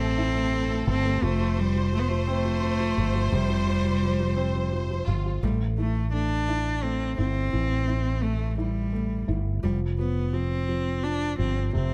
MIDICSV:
0, 0, Header, 1, 5, 480
1, 0, Start_track
1, 0, Key_signature, 0, "minor"
1, 0, Tempo, 700935
1, 835, Time_signature, 6, 3, 24, 8
1, 8175, End_track
2, 0, Start_track
2, 0, Title_t, "Violin section"
2, 0, Program_c, 0, 48
2, 0, Note_on_c, 0, 69, 94
2, 810, Note_off_c, 0, 69, 0
2, 836, Note_on_c, 0, 72, 120
2, 3468, Note_on_c, 0, 65, 81
2, 3474, Note_off_c, 0, 72, 0
2, 3711, Note_off_c, 0, 65, 0
2, 8175, End_track
3, 0, Start_track
3, 0, Title_t, "Cello"
3, 0, Program_c, 1, 42
3, 0, Note_on_c, 1, 60, 101
3, 576, Note_off_c, 1, 60, 0
3, 609, Note_on_c, 1, 60, 103
3, 847, Note_on_c, 1, 57, 99
3, 857, Note_off_c, 1, 60, 0
3, 1091, Note_on_c, 1, 55, 92
3, 1102, Note_off_c, 1, 57, 0
3, 1323, Note_off_c, 1, 55, 0
3, 1332, Note_on_c, 1, 57, 90
3, 1363, Note_on_c, 1, 59, 76
3, 1373, Note_off_c, 1, 57, 0
3, 1427, Note_on_c, 1, 57, 86
3, 1437, Note_off_c, 1, 59, 0
3, 1563, Note_off_c, 1, 57, 0
3, 1569, Note_on_c, 1, 57, 104
3, 2288, Note_on_c, 1, 55, 90
3, 2298, Note_off_c, 1, 57, 0
3, 3241, Note_off_c, 1, 55, 0
3, 3720, Note_on_c, 1, 55, 77
3, 3827, Note_off_c, 1, 55, 0
3, 3960, Note_on_c, 1, 57, 81
3, 4180, Note_off_c, 1, 57, 0
3, 4198, Note_on_c, 1, 62, 94
3, 4675, Note_on_c, 1, 60, 85
3, 4685, Note_off_c, 1, 62, 0
3, 4912, Note_off_c, 1, 60, 0
3, 4916, Note_on_c, 1, 60, 94
3, 5637, Note_on_c, 1, 57, 78
3, 5647, Note_off_c, 1, 60, 0
3, 5874, Note_off_c, 1, 57, 0
3, 5878, Note_on_c, 1, 55, 75
3, 6390, Note_off_c, 1, 55, 0
3, 6597, Note_on_c, 1, 55, 80
3, 6705, Note_off_c, 1, 55, 0
3, 6838, Note_on_c, 1, 59, 80
3, 7080, Note_on_c, 1, 60, 81
3, 7090, Note_off_c, 1, 59, 0
3, 7559, Note_on_c, 1, 62, 85
3, 7569, Note_off_c, 1, 60, 0
3, 7794, Note_off_c, 1, 62, 0
3, 7798, Note_on_c, 1, 60, 77
3, 8022, Note_off_c, 1, 60, 0
3, 8042, Note_on_c, 1, 60, 77
3, 8175, Note_off_c, 1, 60, 0
3, 8175, End_track
4, 0, Start_track
4, 0, Title_t, "Felt piano"
4, 0, Program_c, 2, 0
4, 0, Control_c, 2, 64, 127
4, 0, Note_on_c, 2, 52, 67
4, 0, Note_on_c, 2, 57, 55
4, 0, Note_on_c, 2, 76, 66
4, 3, Note_off_c, 2, 57, 0
4, 3, Note_on_c, 2, 57, 57
4, 92, Note_off_c, 2, 76, 0
4, 123, Note_on_c, 2, 64, 64
4, 229, Note_off_c, 2, 57, 0
4, 239, Note_on_c, 2, 57, 50
4, 355, Note_off_c, 2, 57, 0
4, 365, Note_on_c, 2, 57, 51
4, 472, Note_off_c, 2, 57, 0
4, 483, Note_on_c, 2, 57, 56
4, 591, Note_off_c, 2, 57, 0
4, 601, Note_on_c, 2, 57, 55
4, 711, Note_off_c, 2, 57, 0
4, 722, Note_on_c, 2, 57, 57
4, 812, Note_off_c, 2, 52, 0
4, 817, Note_off_c, 2, 64, 0
4, 835, Note_off_c, 2, 57, 0
4, 839, Note_on_c, 2, 53, 69
4, 844, Control_c, 2, 64, 0
4, 951, Note_off_c, 2, 53, 0
4, 951, Control_c, 2, 64, 127
4, 961, Note_on_c, 2, 53, 57
4, 1071, Note_off_c, 2, 53, 0
4, 1081, Note_on_c, 2, 53, 55
4, 1193, Note_off_c, 2, 53, 0
4, 1203, Note_on_c, 2, 53, 57
4, 1309, Note_off_c, 2, 53, 0
4, 1319, Note_on_c, 2, 53, 53
4, 1431, Note_off_c, 2, 53, 0
4, 1441, Note_on_c, 2, 53, 57
4, 1558, Note_on_c, 2, 60, 71
4, 1667, Note_off_c, 2, 53, 0
4, 1677, Note_on_c, 2, 53, 52
4, 1789, Note_off_c, 2, 53, 0
4, 1800, Note_on_c, 2, 53, 56
4, 1906, Note_off_c, 2, 53, 0
4, 1917, Note_on_c, 2, 53, 56
4, 2030, Note_off_c, 2, 53, 0
4, 2041, Note_on_c, 2, 53, 53
4, 2147, Note_off_c, 2, 53, 0
4, 2157, Note_on_c, 2, 53, 57
4, 2274, Note_on_c, 2, 48, 66
4, 2382, Note_off_c, 2, 53, 0
4, 2392, Note_on_c, 2, 53, 55
4, 2500, Note_off_c, 2, 53, 0
4, 2510, Note_on_c, 2, 53, 55
4, 2624, Note_off_c, 2, 53, 0
4, 2634, Note_on_c, 2, 53, 55
4, 2744, Note_off_c, 2, 53, 0
4, 2754, Note_on_c, 2, 53, 54
4, 2863, Note_off_c, 2, 53, 0
4, 2873, Note_on_c, 2, 53, 56
4, 2968, Note_off_c, 2, 60, 0
4, 2990, Note_on_c, 2, 60, 66
4, 3107, Note_off_c, 2, 53, 0
4, 3117, Note_on_c, 2, 53, 52
4, 3225, Note_off_c, 2, 53, 0
4, 3235, Note_on_c, 2, 53, 53
4, 3351, Note_off_c, 2, 53, 0
4, 3361, Note_on_c, 2, 53, 54
4, 3472, Note_off_c, 2, 53, 0
4, 3482, Note_on_c, 2, 53, 55
4, 3591, Note_off_c, 2, 53, 0
4, 3601, Note_on_c, 2, 53, 54
4, 3687, Note_off_c, 2, 48, 0
4, 3690, Note_off_c, 2, 60, 0
4, 3714, Note_off_c, 2, 53, 0
4, 3721, Note_on_c, 2, 57, 57
4, 3723, Control_c, 2, 64, 0
4, 3826, Control_c, 2, 64, 127
4, 3958, Note_on_c, 2, 64, 43
4, 4190, Note_off_c, 2, 57, 0
4, 4201, Note_on_c, 2, 57, 46
4, 4431, Note_off_c, 2, 64, 0
4, 4441, Note_on_c, 2, 64, 47
4, 4664, Note_off_c, 2, 57, 0
4, 4674, Note_on_c, 2, 57, 47
4, 4906, Note_off_c, 2, 64, 0
4, 4917, Note_on_c, 2, 64, 47
4, 5154, Note_on_c, 2, 52, 55
4, 5382, Note_off_c, 2, 64, 0
4, 5393, Note_on_c, 2, 64, 44
4, 5608, Note_off_c, 2, 57, 0
4, 5635, Note_on_c, 2, 57, 47
4, 5865, Note_off_c, 2, 64, 0
4, 5875, Note_on_c, 2, 64, 50
4, 6103, Note_off_c, 2, 57, 0
4, 6113, Note_on_c, 2, 57, 50
4, 6344, Note_off_c, 2, 64, 0
4, 6355, Note_on_c, 2, 64, 50
4, 6569, Note_off_c, 2, 52, 0
4, 6581, Note_off_c, 2, 57, 0
4, 6589, Note_off_c, 2, 64, 0
4, 6596, Note_on_c, 2, 53, 60
4, 6606, Control_c, 2, 64, 0
4, 6737, Control_c, 2, 64, 127
4, 6829, Note_off_c, 2, 53, 0
4, 6840, Note_on_c, 2, 53, 46
4, 7064, Note_off_c, 2, 53, 0
4, 7074, Note_on_c, 2, 53, 49
4, 7306, Note_off_c, 2, 53, 0
4, 7316, Note_on_c, 2, 53, 49
4, 7542, Note_off_c, 2, 53, 0
4, 7552, Note_on_c, 2, 53, 49
4, 7784, Note_off_c, 2, 53, 0
4, 7794, Note_on_c, 2, 53, 48
4, 8034, Note_on_c, 2, 48, 56
4, 8175, Note_off_c, 2, 48, 0
4, 8175, Note_off_c, 2, 53, 0
4, 8175, End_track
5, 0, Start_track
5, 0, Title_t, "Fretless electric bass"
5, 0, Program_c, 3, 35
5, 0, Note_on_c, 3, 33, 102
5, 571, Note_off_c, 3, 33, 0
5, 596, Note_on_c, 3, 31, 101
5, 821, Note_off_c, 3, 31, 0
5, 835, Note_on_c, 3, 29, 105
5, 2006, Note_off_c, 3, 29, 0
5, 2038, Note_on_c, 3, 31, 89
5, 2262, Note_off_c, 3, 31, 0
5, 2274, Note_on_c, 3, 29, 98
5, 3446, Note_off_c, 3, 29, 0
5, 3474, Note_on_c, 3, 31, 81
5, 3699, Note_off_c, 3, 31, 0
5, 3715, Note_on_c, 3, 33, 89
5, 4888, Note_off_c, 3, 33, 0
5, 4919, Note_on_c, 3, 31, 75
5, 5143, Note_off_c, 3, 31, 0
5, 5159, Note_on_c, 3, 33, 94
5, 6331, Note_off_c, 3, 33, 0
5, 6357, Note_on_c, 3, 31, 83
5, 6583, Note_off_c, 3, 31, 0
5, 6596, Note_on_c, 3, 29, 87
5, 7771, Note_off_c, 3, 29, 0
5, 7800, Note_on_c, 3, 31, 75
5, 8025, Note_off_c, 3, 31, 0
5, 8043, Note_on_c, 3, 29, 88
5, 8175, Note_off_c, 3, 29, 0
5, 8175, End_track
0, 0, End_of_file